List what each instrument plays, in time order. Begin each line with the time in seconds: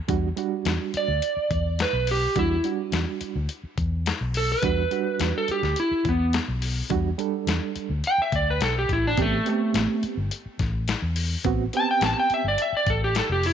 0.08 fingered electric bass E2, reed electric piano G3 D4 F#4, kick, closed hi-hat
0.37 reed electric piano G3 D4 F#4, closed hi-hat
0.65 fingered electric bass E2, snare, closed hi-hat
0.94 electric slide guitar D5, muted fingered electric bass stroke, closed hi-hat
1.08 fingered electric bass D2
1.22 closed hi-hat
1.37 muted fingered electric bass stroke
1.51 fingered electric bass E2, kick, closed hi-hat
1.79 electric slide guitar B4, snare, closed hi-hat
1.93 fingered electric bass B1
2.07 open hi-hat
2.11 electric slide guitar G4
2.36 fingered electric bass E2, reed electric piano G3 D4 F#4, electric slide guitar E4, kick, closed hi-hat
2.64 reed electric piano G3 D4 F#4, closed hi-hat
2.92 fingered electric bass E2, snare, closed hi-hat
3.21 muted fingered electric bass stroke, closed hi-hat
3.35 fingered electric bass D2
3.49 closed hi-hat
3.64 muted fingered electric bass stroke
3.78 fingered electric bass E2, kick, closed hi-hat
4.06 snare, closed hi-hat
4.21 fingered electric bass B1
4.34 electric slide guitar A4, open hi-hat
4.52 electric slide guitar B4
4.62 fingered electric bass E2, reed electric piano G3 D4 F#4, kick, closed hi-hat
4.91 reed electric piano G3 D4 F#4, closed hi-hat
5.20 fingered electric bass E2, snare, closed hi-hat
5.38 electric slide guitar A4
5.48 electric slide guitar G4, muted fingered electric bass stroke, closed hi-hat
5.63 fingered electric bass D2, snare
5.76 electric slide guitar E4, closed hi-hat
5.91 muted fingered electric bass stroke
6.05 fingered electric bass E2, electric slide guitar B3, kick, closed hi-hat
6.33 snare, closed hi-hat
6.48 fingered electric bass B1
6.62 open hi-hat
6.90 fingered electric bass E2, reed electric piano G3 D4 F#4, kick, closed hi-hat
7.18 reed electric piano G3 D4 A4, closed hi-hat
7.47 fingered electric bass E2, snare, closed hi-hat
7.76 muted fingered electric bass stroke, closed hi-hat
7.90 fingered electric bass D2
8.04 electric slide guitar G5, closed hi-hat
8.18 electric slide guitar E5, muted fingered electric bass stroke
8.32 fingered electric bass D2, electric slide guitar D5, kick, closed hi-hat
8.50 electric slide guitar B4
8.61 fingered electric bass B1, electric slide guitar A4, snare, closed hi-hat
8.79 electric slide guitar G4
8.89 fingered electric bass A1, electric slide guitar E4, kick, closed hi-hat
9.07 electric slide guitar D4
9.17 fingered electric bass A1, reed electric piano B3 C4 G4, kick, closed hi-hat
9.22 electric slide guitar A3
9.45 electric slide guitar A3, reed electric piano B3 C4 G4, closed hi-hat
9.74 fingered electric bass A1, snare, closed hi-hat
10.03 muted fingered electric bass stroke, closed hi-hat
10.17 fingered electric bass G1
10.31 closed hi-hat
10.46 muted fingered electric bass stroke
10.59 fingered electric bass A1, kick, snare, closed hi-hat
10.88 snare, closed hi-hat
11.02 fingered electric bass E2
11.16 open hi-hat
11.44 fingered electric bass A1, reed electric piano B3 C4 F#4, kick, closed hi-hat
11.73 reed electric piano B3 C4 G4, electric slide guitar A5, closed hi-hat
11.91 electric slide guitar G5
12.01 fingered electric bass A1, snare, closed hi-hat
12.06 electric slide guitar A5
12.20 electric slide guitar G5
12.30 muted fingered electric bass stroke, closed hi-hat
12.34 electric slide guitar E5
12.44 fingered electric bass G1, electric slide guitar D5
12.58 electric slide guitar E5, closed hi-hat
12.73 muted fingered electric bass stroke
12.77 electric slide guitar D5
12.87 fingered electric bass A1, electric slide guitar A4, kick, closed hi-hat
13.04 electric slide guitar G4
13.15 electric slide guitar A4, snare, closed hi-hat
13.29 fingered electric bass F1, electric slide guitar G4
13.43 electric slide guitar E4, open hi-hat